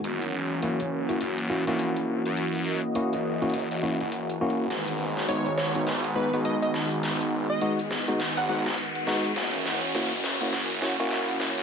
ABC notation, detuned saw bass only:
X:1
M:4/4
L:1/16
Q:"Swing 16ths" 1/4=103
K:F#mix
V:1 name="Detuned saw bass" clef=bass
F,,,4 F,,,4 F,,,3 A,,,4 F,,- | F,,3 z2 F,,,4 F,,,2 F,,,3 F,,,2 | G,,,4 G,,,4 G,,,3 B,,,4 G,,,- | G,,,3 z6 G,,,3 z4 |
F,,,4 F,,,4 F,,,3 A,,,4 F,, |]